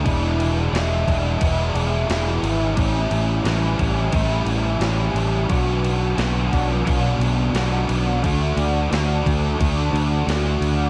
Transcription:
<<
  \new Staff \with { instrumentName = "Overdriven electric guitar" } { \time 4/4 \key d \major \tempo 4 = 88 <e, b, e gis d' e'>4 <e gis d' e'>4 <e, b, e gis d' e'>4 <e gis d' e'>4 | <a, e g cis' e'>4 <e g cis' e'>4 <a, e g cis' e'>4 <e g cis' e'>4 | <b, fis b d' fis'>4 <fis b d' fis'>4 <b, fis b d' fis'>4 <fis b d' fis'>4 | <d a d' fis'>4 <d a d' fis'>4 <d a d' fis'>4 <d a d' fis'>4 | }
  \new Staff \with { instrumentName = "Fingered electric bass" } { \clef bass \time 4/4 \key d \major e,,4 e,,8 e,,8 e,,8 e,,8 e,,8 gis,,8 | a,,8 a,,8 a,,8 a,,8 a,,8 a,,8 a,,8 a,,8 | b,,4 b,,8 b,,8 b,,8 b,,8 b,,8 b,,8 | d,8 d,8 d,8 d,8 d,8 d,8 d,8 d,8 | }
  \new DrumStaff \with { instrumentName = "Drums" } \drummode { \time 4/4 <cymc bd>8 cymc8 <cymc sn>8 <cymc bd sn>8 <cymc bd>8 cymc8 <cymc sn>8 cymc8 | <cymc bd>8 cymc8 <cymc sn>8 <cymc bd>8 <cymc bd>8 cymc8 <cymc sn>8 cymc8 | <cymc bd>8 cymc8 <cymc sn>8 <cymc bd sn>8 <cymc bd>8 cymc8 <cymc sn>8 cymc8 | <cymc bd>8 cymc8 <cymc sn>8 <cymc bd>8 <cymc bd>8 cymc8 <cymc sn>8 cymc8 | }
>>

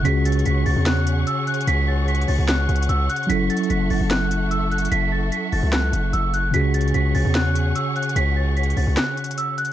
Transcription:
<<
  \new Staff \with { instrumentName = "Celesta" } { \time 4/4 \key cis \phrygian \tempo 4 = 148 b'''8 a'''8 b'''8 a'''8 fis'''4 e'''8 fis'''8 | b'''8 a'''8 b'''8 a'''8 fis'''4 e'''8 fis'''8 | b'''8 a'''8 b'''8 a'''8 fis'''4 e'''8 fis'''8 | b'''8 a'''8 b'''8 a'''8 fis'''4 e'''8 fis'''8 |
b'''8 a'''8 b'''8 a'''8 fis'''4 e'''8 fis'''8 | b'''8 a'''8 b'''8 a'''8 fis'''4 e'''8 fis'''8 | }
  \new Staff \with { instrumentName = "String section" } { \time 4/4 \key cis \phrygian << { <fis'' cis'''>1~ | <fis'' cis'''>1~ | <fis'' cis'''>1~ | <fis'' cis'''>1 |
<fis'' cis'''>1~ | <fis'' cis'''>1 | } \\ { <gis' cis''>1~ | <gis' cis''>1 | <a' e''>1~ | <a' e''>1 |
<gis' cis''>1~ | <gis' cis''>1 | } >> }
  \new Staff \with { instrumentName = "Tine electric piano" } { \time 4/4 \key cis \phrygian <cis cis' fis' gis'>1~ | <cis cis' fis' gis'>1 | <fis cis' e' a'>1~ | <fis cis' e' a'>1 |
<cis cis' fis' gis'>1~ | <cis cis' fis' gis'>1 | }
  \new Staff \with { instrumentName = "808-style bass" } { \clef bass \time 4/4 \key cis \phrygian cis,4 cis,8 cis,16 e,4~ e,16 r4 | cis,4. cis,16 cis,8. cis,8 cis,8 r8 | fis,,8 r8 fis,,8 fis,,16 fis,,2~ fis,,16 | fis,,4 r8 fis,,16 cis,8. fis,,8 fis,,4 |
cis,4 cis,8 cis,16 e,4~ e,16 r4 | cis,4. cis,16 cis,16 r2 | }
  \new DrumStaff \with { instrumentName = "Drums" } \drummode { \time 4/4 \tuplet 3/2 { hh16 r16 r16 hh16 hh16 hh16 } hh8 hho8 <hc hh sn>8 hh8 \tuplet 3/2 { hh16 r16 r16 <hh hho>16 hh16 hh16 } | hh4 \tuplet 3/2 { hh16 hh16 hh16 hho16 r16 r16 <hc hh sn>16 r16 r16 hh16 hh16 hh16 hh16 r16 r16 hh16 hh16 hh16 } | \tuplet 3/2 { hh16 r16 r16 hh16 hh16 hh16 } hh8 hho8 <hc hh sn>8 hh8 \tuplet 3/2 { hh16 r16 r16 <hh hho>16 hh16 hh16 } | hh4 hh8 hho8 <hc hh sn>8 hh8 hh8 hh8 |
\tuplet 3/2 { hh16 r16 r16 hh16 hh16 hh16 } hh8 hho8 <hc hh sn>8 hh8 \tuplet 3/2 { hh16 r16 r16 <hh hho>16 hh16 hh16 } | hh4 \tuplet 3/2 { hh16 hh16 hh16 hho16 r16 r16 <hc hh sn>16 r16 r16 hh16 hh16 hh16 hh16 r16 r16 hh16 hh16 r16 } | }
>>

